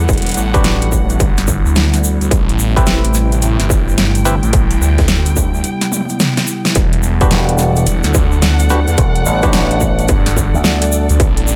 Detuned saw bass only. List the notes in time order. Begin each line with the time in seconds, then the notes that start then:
0.09 E1
0.36 A1
1.20 G1
1.65 D2
2.21 D2
2.31 A1
2.87 A1
3.42 A1
3.60 G1
4.43 A1
4.53 A1
4.81 D2
6.76 E1
7.87 E1
8.04 D2
8.87 E2
10.09 G1
11.10 D2
11.20 A1